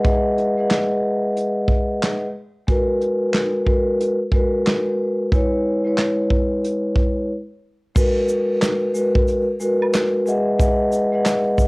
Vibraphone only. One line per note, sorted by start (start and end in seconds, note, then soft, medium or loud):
0.04 0.53 G#3 loud
0.04 0.53 G#4 medium
0.04 0.53 B4 medium
0.04 0.54 D#5 medium
0.04 0.54 E5 medium
0.04 0.54 F#5 loud
0.57 2.24 G#3 medium
0.57 2.24 G#4 medium
0.57 2.25 B4 medium
0.57 2.25 D#5 medium
0.57 2.25 E5 medium
0.57 2.26 F#5 loud
2.68 3.61 G#3 loud
2.68 3.61 F#4 medium
2.68 3.62 A#4 medium
2.68 3.62 B4 loud
3.66 4.15 G#3 loud
3.66 4.16 F#4 medium
3.66 4.16 A#4 medium
3.66 4.17 B4 loud
4.32 5.25 G#3 medium
4.32 5.26 F#4 medium
4.32 5.26 A#4 medium
4.32 5.27 B4 loud
5.32 5.81 G#3 medium
5.32 5.81 E4 medium
5.32 5.82 B4 medium
5.32 5.82 C#5 loud
5.84 7.29 G#3 medium
5.84 7.30 E4 medium
5.84 7.30 B4 medium
5.84 7.31 C#5 loud
7.95 8.88 G#3 medium
7.95 8.89 F#4 medium
7.95 8.89 A#4 medium
7.95 8.90 B4 loud
8.94 9.43 G#3 medium
8.94 9.44 F#4 medium
8.94 9.44 A#4 medium
8.94 9.44 B4 loud
9.60 10.24 G#3 medium
9.60 10.27 F#4 medium
9.60 10.27 A#4 medium
9.60 10.26 B4 loud
10.26 10.57 G#3 loud
10.26 10.57 G#4 medium
10.26 10.58 B4 medium
10.26 10.58 D#5 medium
10.26 10.58 E5 medium
10.26 10.58 F#5 loud
10.58 11.08 G#3 loud
10.58 11.08 G#4 medium
10.58 11.08 B4 medium
10.58 11.09 D#5 medium
10.58 11.09 E5 medium
10.58 11.09 F#5 loud
11.12 11.68 G#3 medium
11.12 11.68 G#4 medium
11.12 11.68 B4 medium
11.12 11.68 D#5 medium
11.12 11.68 E5 medium
11.12 11.68 F#5 loud